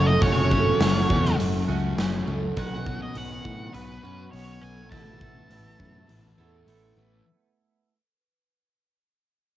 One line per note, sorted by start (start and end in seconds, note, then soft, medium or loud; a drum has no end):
0.00 0.16 F#1 medium
0.00 0.20 F#2 medium
0.00 0.21 C#3 medium
0.00 0.21 F#3 medium
0.00 0.23 F#3 medium
0.00 0.20 A3 medium
0.00 0.22 C#4 medium
0.00 0.23 F#4 medium
0.00 0.21 A4 medium
0.07 0.22 D#5 medium
0.21 0.70 F#1 medium
0.21 0.79 F#2 medium
0.21 0.51 C#3 medium
0.21 0.79 F#3 medium
0.21 0.50 F#3 medium
0.21 0.52 A3 medium
0.21 0.51 C#4 medium
0.21 0.50 F#4 medium
0.21 0.51 G#4 medium
0.21 1.35 C#5 medium
0.21 kick loud
0.21 open hi-hat soft
0.50 0.80 C#3 medium
0.50 0.82 F#3 medium
0.50 0.79 A3 soft
0.50 0.81 C#4 medium
0.50 0.82 F#4 medium
0.50 0.79 A4 medium
0.50 kick medium
0.80 1.04 F#1 medium
0.80 1.37 F#2 medium
0.80 1.11 C#3 medium
0.80 1.98 F#3 medium
0.80 1.09 F#3 medium
0.80 1.10 A3 medium
0.80 1.10 C#4 medium
0.80 1.08 F#4 medium
0.80 1.39 A4 medium
0.80 snare loud
0.80 open hi-hat medium
1.09 1.34 E2 medium
1.09 1.38 C#3 medium
1.09 1.40 F#3 medium
1.09 1.69 A3 medium
1.09 1.68 C#4 medium
1.09 1.67 F#4 medium
1.09 kick medium
1.25 snare soft
1.38 1.63 F#1 medium
1.38 1.95 F#2 medium
1.38 1.68 C#3 medium
1.38 1.66 F#3 medium
1.38 open hi-hat medium
1.67 1.93 C#2 medium
1.67 1.96 C#3 medium
1.67 1.98 F#3 medium
1.67 1.97 A3 medium
1.67 1.98 C#4 medium
1.67 1.99 F#4 medium
1.67 2.27 G#4 medium
1.97 2.22 F#1 medium
1.97 2.54 F#2 medium
1.97 2.27 C#3 medium
1.97 2.55 F#3 medium
1.97 2.25 F#3 medium
1.97 2.55 A3 medium
1.97 2.56 C#4 medium
1.97 2.56 F#4 medium
1.97 snare loud
1.97 open hi-hat medium
2.26 2.51 C#2 medium
2.26 2.55 C#3 medium
2.26 2.54 F#3 medium
2.26 2.57 A4 medium
2.55 3.05 B1 medium
2.55 3.15 B2 medium
2.55 3.14 D#3 medium
2.55 2.88 F#3 medium
2.55 2.87 B3 medium
2.55 2.86 B3 medium
2.55 2.85 C#4 medium
2.55 2.86 F#4 medium
2.55 2.84 F#4 loud
2.55 3.02 F#5 medium
2.55 kick loud
2.55 open hi-hat medium
2.85 3.16 F#3 medium
2.85 3.18 B3 medium
2.85 3.16 B3 medium
2.85 3.16 C#4 medium
2.85 3.16 F#4 medium
2.85 3.14 G#4 medium
2.85 kick medium
3.02 3.17 D#5 medium
3.15 3.40 B1 medium
3.15 3.72 B2 medium
3.15 3.74 D#3 medium
3.15 3.46 F#3 medium
3.15 3.47 B3 medium
3.15 3.45 B3 medium
3.15 3.45 C#4 medium
3.15 3.43 F#4 medium
3.15 3.74 G#4 medium
3.15 3.77 F#5 medium
3.15 open hi-hat medium
3.44 3.69 A2 medium
3.44 3.73 F#3 medium
3.44 3.75 B3 medium
3.44 4.05 B3 medium
3.44 4.04 C#4 medium
3.44 4.02 F#4 medium
3.44 kick medium
3.73 3.98 B1 medium
3.73 4.31 B2 medium
3.73 4.04 F#3 medium
3.73 4.02 B3 medium
3.73 4.31 B4 medium
3.73 open hi-hat soft
4.03 4.28 F#2 medium
4.03 4.32 F#3 medium
4.03 4.34 B3 medium
4.03 4.33 B3 medium
4.03 4.33 C#4 medium
4.03 4.34 F#4 medium
4.03 4.63 F#4 medium
4.32 4.57 B1 medium
4.32 4.90 B2 medium
4.32 4.90 D#3 medium
4.32 4.62 F#3 medium
4.32 4.92 B3 medium
4.32 4.61 B3 medium
4.32 4.90 C#4 medium
4.32 4.91 F#4 medium
4.32 4.62 C#5 medium
4.32 open hi-hat medium
4.61 4.91 B1 medium
4.61 4.91 F#3 medium
4.61 4.92 B3 medium
4.61 4.91 A4 medium
4.61 4.90 G#5 medium
4.91 5.40 A1 medium
4.91 5.48 A2 medium
4.91 5.21 E3 medium
4.91 5.49 A3 medium
4.91 5.19 A3 medium
4.91 5.21 B3 medium
4.91 5.20 E4 medium
4.91 5.21 A4 medium
4.91 5.19 A4 medium
4.91 6.63 A5 medium
4.91 kick loud
4.91 open hi-hat soft
5.20 5.49 E3 medium
5.20 5.50 A3 medium
5.20 5.50 B3 medium
5.20 5.51 E4 medium
5.20 5.52 A4 medium
5.20 5.49 B4 medium
5.20 kick medium
5.49 5.74 A1 medium
5.49 6.07 A2 medium
5.49 5.79 E3 medium
5.49 6.09 A3 medium
5.49 5.77 A3 medium
5.49 5.80 B3 medium
5.49 5.79 E4 medium
5.49 5.78 A4 medium
5.49 6.09 B4 medium
5.49 open hi-hat soft
5.78 6.04 F#2 medium
5.78 6.08 E3 medium
5.78 6.09 A3 medium
5.78 6.39 B3 medium
5.78 6.38 E4 medium
5.78 6.37 A4 medium
5.78 kick medium
6.08 6.33 A1 medium
6.08 6.65 A2 medium
6.08 6.39 E3 medium
6.08 6.36 A3 medium
6.08 open hi-hat soft
6.37 6.62 E2 medium
6.37 6.67 E3 medium
6.37 6.68 A3 medium
6.37 6.66 B3 medium
6.37 6.67 E4 medium
6.37 6.68 A4 medium
6.37 6.97 A4 medium
6.67 6.91 A1 medium
6.67 7.24 A2 medium
6.67 6.98 E3 medium
6.67 7.24 A3 medium
6.67 6.95 A3 medium
6.67 7.24 B3 medium
6.67 7.25 E4 medium
6.67 7.25 A4 medium
6.67 open hi-hat medium
6.96 7.20 A1 medium
6.96 7.25 E3 medium
6.96 7.24 A3 medium
6.96 7.26 B4 medium